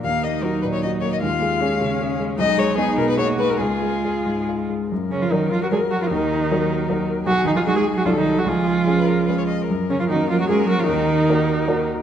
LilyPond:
<<
  \new Staff \with { instrumentName = "Violin" } { \time 3/4 \key des \mixolydian \tempo 4 = 151 f''8 ees''8 bes'8 ces''16 des''16 ees''8 des''16 ees''16 | f''2~ f''8 r8 | \key fis \major dis''8 cis''8 gis'8 ais'16 b'16 cis''8 b'16 ais'16 | gis'2 r4 |
ais'2.~ | ais'2. | gis'2 a'4 | gis'4 gis'16 b'16 ais'8 b'16 cis''16 dis''8 |
ais'2.~ | ais'2. | }
  \new Staff \with { instrumentName = "Viola" } { \time 3/4 \key des \mixolydian ees'2. | f'4 des'2 | \key fis \major dis'4 dis'4 fis'4 | eis'2~ eis'8 r8 |
r8 cis'16 eis'16 dis'8 eis'16 fis'16 gis'8 fis'16 eis'16 | dis'2~ dis'8 r8 | fis'8 dis'16 eis'16 fis'16 gis'8 fis'16 eis'16 ees'8 ges'16 | eis'2~ eis'8 r8 |
r8 cis'16 eis'16 dis'8 eis'16 fis'16 gis'8 fis'16 eis'16 | dis'2~ dis'8 r8 | }
  \new Staff \with { instrumentName = "Grand piano" } { \time 3/4 \key des \mixolydian ees,8 bes8 <ees' ges'>8 bes,8 <ees' ges'>8 bes8 | ees,8 aes8 <des' aes'>8 des8 <des' aes'>8 aes8 | \key fis \major b,,8 gis8 <dis' gis'>8 b,8 <dis' gis'>8 gis8 | cis,8 gis8 <eis' gis'>8 gis,8 <eis' gis'>8 gis8 |
fis,4 <fis fis' ais'>4 <fis fis' ais'>4 | dis,4 <fis fis' ais'>4 <fis fis' ais'>4 | b,,4 <gis dis' gis'>4 <c, ges ees' a'>4 | cis,4 <gis cis' gis'>4 <gis cis' gis'>4 |
fis,4 <ais cis' fis'>4 <ais cis' fis'>4 | dis,4 <ais fis' ais'>4 <ais fis' ais'>4 | }
  \new Staff \with { instrumentName = "Cello" } { \clef bass \time 3/4 \key des \mixolydian bes4 ges2 | aes8 bes8 aes2 | \key fis \major gis4 b4 ais4 | gis2~ gis8 r8 |
r8 cis16 eis16 dis8 eis16 fis16 gis8 fis16 eis16 | dis2~ dis8 r8 | fis8 dis16 eis16 fis16 gis8 fis16 eis16 ees8 ges16 | eis2~ eis8 r8 |
r8 cis16 eis16 dis8 eis16 fis16 gis8 fis16 eis16 | dis2~ dis8 r8 | }
>>